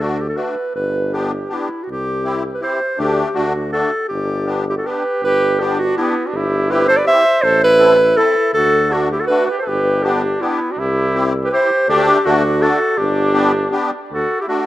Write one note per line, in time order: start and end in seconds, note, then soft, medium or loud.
0.00 0.35 D2 medium
0.00 0.18 A3 medium
0.00 0.18 D4 soft
0.00 0.18 F#4 medium
0.00 0.22 F#4 medium
0.21 0.28 G4 medium
0.29 0.39 A4 medium
0.36 0.55 A3 soft
0.36 0.55 D4 soft
0.36 0.55 F#4 medium
0.36 0.75 B4 medium
0.75 1.49 G1 medium
0.75 1.16 B4 medium
1.13 1.32 B3 medium
1.13 1.31 D4 soft
1.13 1.31 G4 medium
1.13 1.55 G4 medium
1.49 1.69 B3 soft
1.49 1.69 D4 soft
1.49 1.85 E4 medium
1.49 1.69 G4 medium
1.83 1.90 F#4 medium
1.89 2.61 C2 medium
1.89 2.43 G4 medium
2.24 2.43 C4 medium
2.24 2.43 E4 medium
2.24 2.43 G4 medium
2.54 2.62 B4 medium
2.61 2.80 C4 soft
2.61 2.80 E4 soft
2.61 2.79 G4 medium
2.61 2.97 C5 medium
2.98 3.23 D2 medium
2.98 3.28 A3 medium
2.98 3.29 D4 medium
2.98 3.28 G4 medium
2.98 3.37 G4 medium
3.34 3.83 D2 medium
3.34 3.53 A3 medium
3.34 3.53 D4 medium
3.34 3.53 F#4 medium
3.34 3.72 F#4 medium
3.73 3.91 A3 medium
3.73 3.91 D4 soft
3.73 3.91 F#4 medium
3.73 4.07 A4 medium
4.08 4.84 G1 medium
4.08 4.62 G4 medium
4.46 4.65 B3 medium
4.46 4.65 D4 soft
4.46 4.65 G4 medium
4.70 4.74 E4 medium
4.70 4.73 G4 medium
4.76 4.89 F#4 medium
4.76 4.88 A4 medium
4.85 5.04 B3 soft
4.85 5.03 D4 medium
4.85 5.03 G4 medium
4.85 5.24 G4 medium
4.85 5.23 B4 medium
5.22 5.95 G1 medium
5.22 5.65 G4 loud
5.22 5.61 B4 loud
5.59 5.78 B3 medium
5.59 5.78 D4 medium
5.59 5.78 G4 medium
5.59 5.81 G4 medium
5.64 5.83 D4 medium
5.80 5.98 D4 medium
5.80 5.97 F#4 medium
5.96 6.14 B3 medium
5.96 6.29 B3 medium
5.96 6.15 D4 medium
5.96 6.28 E4 medium
5.96 6.15 G4 medium
6.26 6.38 D4 medium
6.26 6.34 F#4 medium
6.33 7.04 G1 medium
6.33 6.73 E4 medium
6.33 6.71 G4 medium
6.69 6.87 C4 medium
6.69 6.87 E4 medium
6.69 6.87 G4 medium
6.69 6.89 G4 medium
6.69 6.88 B4 medium
6.88 7.00 A4 medium
6.88 6.98 C5 loud
6.97 7.07 B4 medium
6.97 7.06 D5 medium
7.05 7.23 C4 medium
7.05 7.24 E4 medium
7.05 7.23 G4 medium
7.05 7.46 C5 medium
7.05 7.44 E5 loud
7.42 8.15 A1 medium
7.42 7.63 A4 loud
7.42 7.62 C5 loud
7.64 8.17 E4 medium
7.64 8.18 B4 loud
7.78 7.97 C4 medium
7.78 7.97 E4 medium
7.78 7.97 A4 medium
8.15 8.34 C4 medium
8.15 8.34 E4 medium
8.15 8.54 E4 medium
8.15 8.34 A4 medium
8.15 8.53 A4 loud
8.54 9.27 D2 medium
8.54 8.93 F#4 medium
8.54 8.94 A4 loud
8.89 9.08 A3 medium
8.89 9.08 D4 medium
8.89 9.12 D4 medium
8.89 9.08 F#4 medium
8.89 9.11 F#4 medium
9.11 9.24 E4 medium
9.11 9.21 G4 medium
9.20 9.29 F#4 medium
9.20 9.27 A4 medium
9.27 9.47 A3 medium
9.27 9.47 D4 medium
9.27 9.47 F#4 medium
9.27 9.48 F#4 medium
9.27 9.46 B4 loud
9.47 9.60 G4 medium
9.47 9.58 B4 medium
9.59 9.70 A4 medium
9.59 9.67 C5 medium
9.65 10.40 G1 medium
9.65 10.07 G4 loud
9.65 10.05 B4 medium
10.03 10.22 B3 medium
10.03 10.22 D4 medium
10.03 10.44 D4 medium
10.03 10.42 G4 medium
10.03 10.22 G4 medium
10.41 10.60 B3 medium
10.41 10.74 B3 medium
10.41 10.59 D4 medium
10.41 10.72 E4 medium
10.41 10.59 G4 medium
10.71 10.80 D4 medium
10.71 10.81 F#4 medium
10.77 11.49 C2 medium
10.77 11.27 E4 loud
10.77 11.28 G4 medium
11.14 11.33 C4 medium
11.14 11.33 E4 medium
11.14 11.33 G4 medium
11.44 11.50 G4 medium
11.44 11.52 B4 medium
11.51 11.70 C4 medium
11.51 11.70 E4 medium
11.51 11.85 G4 medium
11.51 11.70 G4 medium
11.51 11.87 C5 loud
11.88 12.12 D2 medium
11.88 12.18 A3 medium
11.88 12.18 D4 medium
11.88 12.24 D4 loud
11.88 12.18 G4 loud
11.88 12.27 G4 loud
12.24 12.72 D2 loud
12.24 12.43 A3 medium
12.24 12.63 D4 medium
12.24 12.43 D4 medium
12.24 12.43 F#4 medium
12.24 12.64 F#4 medium
12.60 12.78 A3 medium
12.60 12.78 D4 medium
12.60 12.79 F#4 medium
12.60 12.99 F#4 medium
12.60 12.99 A4 medium
12.97 13.71 G1 loud
12.97 13.93 D4 loud
12.97 13.93 G4 medium
13.33 13.52 B3 medium
13.33 13.52 D4 medium
13.33 13.52 G4 medium
13.71 13.90 B3 medium
13.71 13.91 D4 medium
13.71 13.91 G4 medium
14.11 14.24 D2 medium
14.11 14.38 F#4 medium
14.11 14.37 A4 medium
14.41 14.46 E4 medium
14.41 14.44 G4 medium
14.48 14.66 A3 medium
14.48 14.66 D4 medium
14.48 14.66 F#4 medium